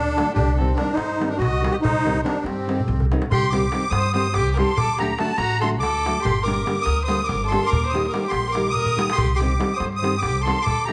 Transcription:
Already playing: D2 D4 A4
0.07 darbuka tek
0.16 D3 F#3 A3 D4, darbuka tek
0.34 C2 D4 G4, darbuka dum
0.49 darbuka tek
0.56 D#3 C4 A4, darbuka tek
0.60 G3 C4 D#4
0.74 D4 A#4, darbuka tek
0.79 D#3 G3 C4 D#4
0.87 darbuka tek
0.93 G2 D#4
0.97 C5, darbuka tek
1.10 darbuka tek
1.19 D#3 G3 C4 D#4, darbuka tek
1.27 D4 A#4
1.32 darbuka tek
1.37 C2 F#4 D#5
1.42 darbuka tek, darbuka dum
1.54 darbuka tek
1.62 D#3 G3 C4 D#4, darbuka tek
1.71 G4 D#5
1.81 C2 D#4 C5, darbuka dum
1.96 darbuka tek
2.04 D#3 G3 C4 D#4, darbuka tek
2.17 darbuka tek
2.23 D#3 G3 C4 D4 D#4 A#4, darbuka tek
2.36 darbuka tek
2.42 G2 C4 G4
2.46 darbuka tek
2.67 D#3 G3 C4 D#4, darbuka tek
2.80 darbuka dum
2.88 C2, darbuka dum
3.00 darbuka dum
3.12 D#3 G3 C4 D#4, darbuka tek
3.22 darbuka tek
3.31 C2 G4 C6, darbuka dum
3.50 D#3 G3 C4 D#4 G4 D6, darbuka tek
3.55 G4
3.72 D#3 G3 C4 D#4 G4, darbuka tek
3.90 G2 C5 D#6, darbuka tek
4.13 D#3 G3 C4 D#4 G4 C5 D#6, darbuka tek
4.34 C2 G4 D6, darbuka tek
4.47 darbuka tek
4.51 A#4 D6
4.57 D#3 G3 C4 D#4 G4 A4 C6, darbuka tek
4.76 D2 A4 D6, darbuka dum
4.99 D3 F#3 A3 D4 F#4 G4 A#5, darbuka tek
5.18 D3 F#3 A3 D4 F#4 A5, darbuka tek
5.37 A1 F#4 A#5, darbuka tek
5.50 darbuka tek
5.60 D3 F#3 A3 D4 F#4 A4 C6, darbuka tek
5.79 D2 A4 D6, darbuka tek
5.94 darbuka tek
6.06 D3 F#3 A3 D4 F#4, darbuka tek
6.22 G1 G4 C6, darbuka dum
6.42 D3 G3 A#4 D6
6.46 A#3 D4 G4, darbuka tek
6.65 D3 G3 A#3 D4 G4, darbuka tek
6.82 A#4 D#6
6.86 D2, darbuka tek
6.97 darbuka tek
7.04 D3 G3 C5 D#6
7.08 A#3 D4 G4, darbuka tek
7.24 A#4 D6
7.29 G1, darbuka tek
7.41 darbuka tek
7.46 A4 C6
7.51 D3 G3 A#3 D4 G4, darbuka tek
7.62 A#4, darbuka tek
7.67 D6
7.72 D#2, darbuka dum
7.85 C5, darbuka tek
7.89 D#3 D#6
7.94 G3 A#3 D#4 G4, darbuka tek
8.04 darbuka tek
8.08 A#4 D6
8.13 D#3 G3 A#3 D#4 G4, darbuka tek
8.23 G4, darbuka tek
8.28 A#1 C6, darbuka tek
8.44 darbuka tek
8.50 A#4 D6
8.55 D#3 G3 A#3 D#4 G4, darbuka tek
8.65 A#4, darbuka tek
8.70 D#6
8.75 D#2, darbuka dum
8.86 darbuka dum
8.96 D#3 G3 A#3 D#4 G4, darbuka tek
9.10 G4 C6, darbuka tek
9.18 C2, darbuka dum
9.35 G4 D6
9.40 D#3 G3 C4 D#4 G4, darbuka tek
9.59 D#3 G3 C4 D#4 G4, darbuka tek
9.73 C5 D#6
9.80 G2, darbuka tek
9.92 D#6, darbuka tek
9.99 D#3 G3 C4 C5
10.04 D#4 G4, darbuka tek
10.18 G4 D6
10.23 C2, darbuka tek
10.36 darbuka tek
10.41 A4 C6
10.46 D#3 G3 C4 D#4 G4, darbuka tek
10.57 darbuka tek
10.61 A4 D6
10.67 D2, darbuka dum
10.86 D3 F#3 G4 A#5, darbuka tek

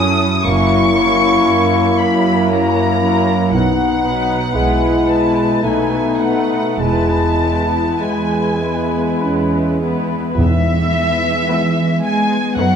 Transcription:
Already playing: F#2 F#3 C#4 E4 A4 D#6
0.44 F#1 F#2 F#3 A#3 C#4 E4 A#4 C#6
0.96 F#3 C#4 E4 A#4
1.47 F#2
1.98 F#3 C#4 E4 A#4 B5
2.50 F#2 A#3 E4 A#5
3.02 F#3 C#4 E4 A#4
3.53 B1 B2 B3 D#4 F#5
4.04 F#3 B3 D#4 B4
4.53 B1 B2 G#3 B3 E4 B4
5.08 G#3 B3 E4 B4 A5
5.62 B1 B2 A3 B3 D#4 B4 G#5
6.20 A3 B3 D#4 B4 F#5
6.79 E1 E2 G#3 B3 E4 B4 A5
7.41 G#3 B3 E4 B4
8.01 E2 G#3 E4 G#5
8.60 G#3 B3 E4 B4
9.21 E2 C#4
9.80 G#3 B3 E4 B4
10.38 E2 E3 G#3 B3 E5
11.49 G#3 B3 E4 B4
12.04 G#3 G#5
12.57 F#2 F#3 A3 B3 D#4 B4 F#5

